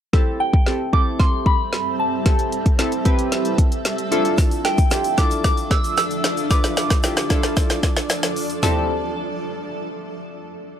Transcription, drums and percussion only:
0.13 kick loud
0.13 snare medium
0.53 kick medium
0.66 snare medium
0.93 kick medium
1.20 kick medium
1.20 snare medium
1.46 kick medium
1.73 snare medium
2.26 kick loud
2.26 snare medium
2.26 closed hi-hat loud
2.39 closed hi-hat medium
2.52 closed hi-hat medium
2.66 kick medium
2.66 closed hi-hat medium
2.79 snare medium
2.79 closed hi-hat medium
2.92 closed hi-hat medium
3.05 kick medium
3.05 closed hi-hat medium
3.19 closed hi-hat medium
3.32 snare medium
3.32 closed hi-hat loud
3.45 closed hi-hat medium
3.58 kick medium
3.58 closed hi-hat medium
3.72 closed hi-hat medium
3.85 snare medium
3.85 closed hi-hat medium
3.98 closed hi-hat medium
4.12 closed hi-hat medium
4.25 closed hi-hat medium
4.38 kick loud
4.38 snare medium
4.38 closed hi-hat medium
4.38 shaker medium
4.51 closed hi-hat medium
4.51 shaker soft
4.65 snare medium
4.65 closed hi-hat medium
4.78 kick medium
4.78 closed hi-hat medium
4.78 shaker soft
4.91 snare medium
4.91 closed hi-hat medium
4.91 shaker medium
5.04 closed hi-hat medium
5.04 shaker soft
5.18 kick medium
5.18 snare medium
5.18 closed hi-hat medium
5.18 shaker soft
5.31 closed hi-hat medium
5.31 shaker medium
5.44 kick loud
5.44 snare medium
5.44 closed hi-hat loud
5.44 shaker medium
5.57 closed hi-hat medium
5.57 shaker soft
5.71 kick medium
5.71 snare medium
5.71 closed hi-hat medium
5.84 closed hi-hat medium
5.84 shaker medium
5.97 snare loud
5.97 closed hi-hat medium
5.97 shaker medium
6.11 closed hi-hat medium
6.11 shaker medium
6.24 snare loud
6.24 closed hi-hat loud
6.37 closed hi-hat medium
6.37 shaker medium
6.51 kick loud
6.51 snare loud
6.51 closed hi-hat loud
6.51 shaker medium
6.64 snare loud
6.64 closed hi-hat medium
6.64 shaker soft
6.77 snare loud
6.77 closed hi-hat medium
6.77 shaker medium
6.90 kick medium
6.90 snare loud
6.90 closed hi-hat medium
6.90 shaker soft
7.03 snare loud
7.03 closed hi-hat medium
7.03 shaker medium
7.17 snare loud
7.17 closed hi-hat medium
7.17 shaker soft
7.30 kick medium
7.30 snare loud
7.30 closed hi-hat medium
7.30 shaker medium
7.43 snare loud
7.43 closed hi-hat medium
7.43 shaker soft
7.57 kick loud
7.57 snare loud
7.57 closed hi-hat loud
7.57 shaker medium
7.70 snare loud
7.70 closed hi-hat medium
7.70 shaker soft
7.83 kick medium
7.83 snare loud
7.83 closed hi-hat medium
7.83 shaker soft
7.97 snare loud
7.97 closed hi-hat medium
7.97 shaker medium
8.10 snare loud
8.10 closed hi-hat medium
8.10 shaker medium
8.23 snare loud
8.23 closed hi-hat medium
8.23 shaker medium
8.36 open hi-hat loud
8.36 shaker medium
8.50 closed hi-hat medium
8.50 shaker medium
8.63 snare loud
8.63 floor tom loud
8.63 shaker medium

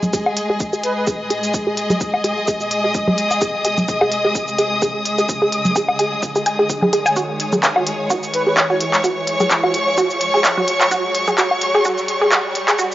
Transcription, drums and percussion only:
0.03 kick medium
0.03 low conga medium
0.03 cabasa soft
0.13 kick loud
0.13 cabasa medium
0.26 low woodblock medium
0.37 closed hi-hat medium
0.60 kick loud
0.60 cabasa medium
0.73 cabasa soft
0.83 closed hi-hat medium
1.07 kick loud
1.07 cabasa medium
1.30 closed hi-hat medium
1.43 cabasa soft
1.54 kick loud
1.54 cabasa medium
1.77 closed hi-hat medium
1.90 low conga medium
1.90 cabasa soft
2.01 kick loud
2.01 cabasa medium
2.14 low woodblock medium
2.24 closed hi-hat medium
2.48 kick loud
2.48 cabasa medium
2.60 cabasa soft
2.71 closed hi-hat medium
2.94 kick loud
2.94 cabasa medium
3.08 kick medium
3.08 low conga medium
3.18 closed hi-hat medium
3.31 cabasa soft
3.31 low woodblock medium
3.41 kick loud
3.41 cabasa medium
3.65 closed hi-hat medium
3.78 kick medium
3.78 low conga medium
3.78 cabasa soft
3.88 kick loud
3.88 cabasa medium
4.01 low woodblock medium
4.12 closed hi-hat medium
4.35 kick loud
4.35 cabasa medium
4.48 cabasa soft
4.59 closed hi-hat medium
4.82 kick loud
4.82 cabasa medium
5.05 closed hi-hat medium
5.18 cabasa soft
5.29 kick loud
5.29 cabasa medium
5.52 closed hi-hat medium
5.65 low conga medium
5.65 cabasa soft
5.76 kick loud
5.76 cabasa medium
5.89 low woodblock medium
5.99 closed hi-hat loud
6.23 kick loud
6.23 cabasa medium
6.36 cabasa soft
6.46 closed hi-hat medium
6.70 kick loud
6.70 cabasa medium
6.82 kick medium
6.82 low conga medium
6.93 closed hi-hat medium
7.06 cabasa soft
7.06 low woodblock medium
7.16 kick loud
7.16 cabasa medium
7.40 closed hi-hat medium
7.53 kick medium
7.53 low conga medium
7.53 cabasa soft
7.63 kick loud
7.63 clap medium
7.63 cabasa medium
7.76 low woodblock medium
7.87 closed hi-hat medium
8.10 kick loud
8.10 cabasa medium
8.23 cabasa soft
8.34 closed hi-hat medium
8.57 kick loud
8.57 clap medium
8.57 cabasa medium
8.80 closed hi-hat medium
8.94 clap medium
8.94 cabasa soft
9.04 kick loud
9.04 cabasa medium
9.27 closed hi-hat medium
9.40 low conga medium
9.40 cabasa soft
9.51 kick loud
9.51 clap medium
9.51 cabasa medium
9.64 low woodblock medium
9.74 closed hi-hat medium
9.98 kick loud
9.98 cabasa medium
10.10 cabasa soft
10.21 closed hi-hat medium
10.44 kick loud
10.44 clap medium
10.44 cabasa medium
10.57 kick medium
10.57 low conga medium
10.68 closed hi-hat medium
10.81 clap medium
10.81 cabasa soft
10.81 low woodblock soft
10.91 kick loud
10.91 cabasa medium
11.15 closed hi-hat medium
11.28 kick medium
11.28 low conga medium
11.28 cabasa soft
11.38 kick loud
11.38 clap medium
11.38 cabasa medium
11.51 low woodblock medium
11.61 closed hi-hat medium
11.85 kick loud
11.85 cabasa medium
11.98 cabasa soft
12.08 closed hi-hat medium
12.32 kick loud
12.32 clap medium
12.32 cabasa medium
12.55 closed hi-hat medium
12.68 clap medium
12.68 cabasa soft
12.79 kick loud
12.79 cabasa medium

